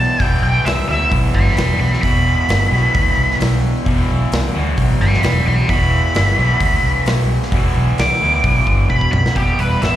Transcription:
0.00 0.19 E2 medium
0.00 0.19 B2 medium
0.00 0.23 E3 medium
0.00 0.22 A5 loud
0.19 0.36 E1 medium
0.19 0.91 E2 medium
0.19 0.88 B2 medium
0.19 0.87 E3 loud
0.19 0.40 G5 loud
0.19 kick loud
0.19 open hi-hat medium
0.42 0.58 B1 medium
0.42 0.65 G5 medium
0.65 0.81 C2 medium
0.65 0.87 E5 medium
0.65 snare loud
0.65 open hi-hat medium
0.88 1.04 D2 medium
0.88 2.03 E2 medium
0.88 2.02 B2 medium
0.88 2.06 E3 medium
0.88 1.11 E5 medium
1.11 1.27 B1 loud
1.11 kick loud
1.11 open hi-hat medium
1.35 1.50 G1 medium
1.35 1.56 B5 medium
1.35 1.56 D6 medium
1.35 kick medium
1.48 snare soft
1.56 1.72 E1 medium
1.56 1.78 B5 medium
1.56 1.80 D6 medium
1.56 snare loud
1.56 open hi-hat medium
1.79 1.95 B1 medium
1.79 2.00 B5 medium
1.79 2.03 D6 medium
1.93 snare soft
2.02 2.34 E1 medium
2.02 2.75 E2 medium
2.02 2.71 B2 medium
2.02 3.36 B5 loud
2.02 kick loud
2.02 open hi-hat medium
2.06 2.71 E3 medium
2.48 2.64 G1 loud
2.48 snare loud
2.48 open hi-hat medium
2.71 2.87 B1 medium
2.71 3.86 B2 medium
2.71 3.88 E3 medium
2.75 3.85 E2 medium
2.95 3.10 D2 loud
2.95 kick loud
2.95 open hi-hat medium
3.17 3.33 C2 medium
3.31 snare soft
3.40 3.71 B1 medium
3.40 snare loud
3.40 open hi-hat medium
3.85 4.02 E1 loud
3.85 4.57 E2 medium
3.85 4.54 B2 medium
3.85 4.53 E3 medium
3.85 kick loud
3.85 open hi-hat medium
4.09 4.25 B1 medium
4.32 4.48 C2 medium
4.32 snare loud
4.32 open hi-hat medium
4.54 4.71 D2 medium
4.54 5.68 E2 medium
4.54 5.68 B2 medium
4.54 5.71 E3 medium
4.78 4.93 B1 loud
4.78 kick loud
4.78 open hi-hat medium
5.00 5.16 G1 medium
5.00 5.22 B5 medium
5.00 5.23 D6 loud
5.14 snare soft
5.23 5.39 E1 medium
5.23 5.45 B5 medium
5.23 5.46 D6 loud
5.23 snare loud
5.23 open hi-hat medium
5.46 5.62 B1 medium
5.46 5.68 B5 medium
5.46 5.69 D6 loud
5.68 6.00 E1 loud
5.68 6.39 E2 medium
5.68 6.37 B2 medium
5.68 6.36 E3 loud
5.68 7.03 B5 loud
5.68 kick loud
5.68 open hi-hat medium
6.15 6.31 G1 loud
6.15 snare loud
6.15 open hi-hat medium
6.36 6.53 B1 medium
6.36 7.51 E2 medium
6.36 7.51 B2 medium
6.36 7.54 E3 medium
6.60 6.76 D2 loud
6.60 kick loud
6.60 open hi-hat medium
6.83 6.99 C2 loud
7.06 7.37 B1 medium
7.06 snare loud
7.06 open hi-hat medium
7.42 snare soft
7.51 7.68 E1 loud
7.51 8.19 E2 medium
7.51 8.20 B2 medium
7.51 8.20 E3 loud
7.51 kick loud
7.51 open hi-hat medium
7.76 7.91 B1 medium
7.98 8.14 C2 medium
7.98 8.88 D6 loud
7.98 snare loud
7.98 open hi-hat medium
8.21 8.37 D2 medium
8.21 9.34 E2 medium
8.21 9.35 B2 medium
8.21 9.35 E3 medium
8.44 8.60 B1 loud
8.44 kick loud
8.44 open hi-hat medium
8.67 8.83 G1 loud
8.67 kick medium
8.90 9.06 E1 medium
8.90 9.11 B5 medium
8.90 kick medium
9.01 kick medium
9.12 9.28 B1 loud
9.12 9.35 B5 loud
9.12 mid tom medium
9.26 snare loud
9.36 9.52 E1 medium
9.36 9.79 E2 medium
9.36 9.80 B2 medium
9.36 9.81 E3 medium
9.36 9.58 B3 medium
9.36 9.60 G4 medium
9.36 kick loud
9.36 open hi-hat medium
9.58 9.75 E1 medium
9.58 9.80 G3 medium
9.58 9.83 B4 medium
9.58 open hi-hat medium
9.80 9.96 A1 medium
9.80 9.96 E2 medium
9.80 9.96 B2 medium
9.80 9.96 E3 medium
9.80 9.96 B3 medium
9.80 9.96 E5 medium
9.80 snare loud
9.80 open hi-hat medium

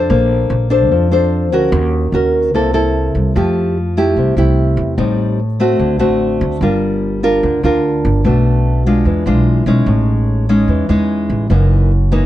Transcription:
0.00 0.68 D4 medium
0.00 0.68 A4 medium
0.00 0.68 C5 medium
0.10 0.48 A#1 loud
0.10 0.89 A#3 medium
0.50 0.90 A#1 medium
0.70 1.08 D4 medium
0.70 1.08 A4 medium
0.70 1.08 C5 medium
0.90 1.52 F2 medium
0.90 1.71 F3 soft
1.11 1.49 D4 medium
1.11 1.49 A4 medium
1.11 1.50 C5 medium
1.52 1.71 D2 medium
1.52 2.10 C#4 medium
1.52 2.11 F#4 medium
1.52 2.11 A#4 medium
1.72 2.10 D#2 loud
1.72 2.53 D#3 medium
2.12 2.54 D#2 medium
2.12 2.53 C#4 soft
2.12 2.53 F#4 soft
2.12 2.53 A#4 medium
2.54 3.11 C2 medium
2.54 3.34 C3 soft
2.54 2.71 A#3 soft
2.54 2.71 E4 soft
2.54 2.72 A4 medium
2.74 3.32 A#3 medium
2.74 3.32 E4 medium
2.74 3.32 A4 medium
3.15 3.34 C2 medium
3.35 4.13 F2 medium
3.35 4.15 F3 soft
3.35 3.76 A3 soft
3.35 3.76 E4 soft
3.35 3.77 G4 medium
3.97 4.34 A3 medium
3.97 4.35 E4 medium
3.97 4.35 G4 medium
4.16 4.36 C2 medium
4.16 4.97 C3 soft
4.37 4.75 C2 medium
4.37 4.95 A3 medium
4.37 4.95 E4 medium
4.37 4.96 G4 medium
4.77 4.96 E2 medium
4.97 5.76 A1 medium
4.97 5.77 A2 soft
4.97 5.39 G3 soft
4.97 5.39 C4 medium
4.97 5.39 D#4 medium
5.60 5.97 A3 medium
5.60 5.97 C4 medium
5.60 5.98 F#4 medium
5.79 6.00 D2 medium
5.79 6.60 D3 soft
5.99 6.38 A1 medium
5.99 6.58 A3 medium
5.99 6.58 C4 medium
5.99 6.58 F#4 medium
6.41 6.60 D2 medium
6.61 7.39 G1 medium
6.61 7.41 G3 soft
6.61 7.20 D4 medium
6.61 7.20 F4 soft
6.61 7.20 A#4 medium
7.23 7.60 D4 medium
7.23 7.60 F4 medium
7.23 7.61 A#4 medium
7.43 7.62 D2 medium
7.43 8.22 D3 medium
7.63 8.01 D2 medium
7.63 8.21 D4 medium
7.63 8.22 F4 medium
7.63 8.22 A#4 medium
8.05 8.23 G1 medium
8.24 9.02 B1 medium
8.24 9.04 B2 medium
8.24 8.82 A3 soft
8.24 8.83 D4 soft
8.24 8.83 F#4 medium
8.86 9.23 G#3 medium
8.86 9.24 D4 medium
8.86 9.24 F4 medium
9.05 9.27 E2 medium
9.05 9.85 E3 soft
9.26 9.64 B1 medium
9.26 9.64 G#3 medium
9.26 9.64 D4 medium
9.26 9.64 F4 medium
9.66 9.85 B1 medium
9.66 10.45 G#3 medium
9.66 10.45 C#4 medium
9.66 10.45 D#4 medium
9.86 10.64 A1 medium
9.86 10.67 A2 soft
10.49 10.86 G#3 medium
10.49 10.86 C#4 medium
10.49 10.86 D#4 medium
10.68 10.87 E2 medium
10.68 11.48 E3 soft
10.89 11.27 E2 medium
10.89 11.47 G#3 medium
10.89 11.47 C#4 medium
10.89 11.47 D#4 medium
11.30 11.49 A1 medium
11.50 12.26 F#1 medium
11.50 12.26 F#2 medium
11.50 11.91 E3 medium
11.50 11.91 A#3 medium
11.50 11.91 D#4 medium
12.12 12.26 E3 medium
12.12 12.26 A#3 medium
12.12 12.26 D#4 medium

